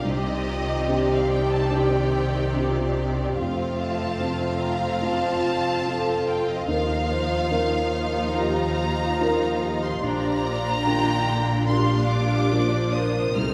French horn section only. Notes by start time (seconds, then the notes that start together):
0.05 D#4
0.45 F4
0.87 G4
1.72 D#3
2.57 F4
2.97 G4
3.39 A3
5.02 F4
5.88 A4
6.69 A#4
7.09 C5
7.47 A#4
8.35 G4
8.79 F4
9.22 A#4
9.64 G4
10.87 F4
11.28 D4
11.71 G4
12.54 F4
12.96 A#4
13.38 A4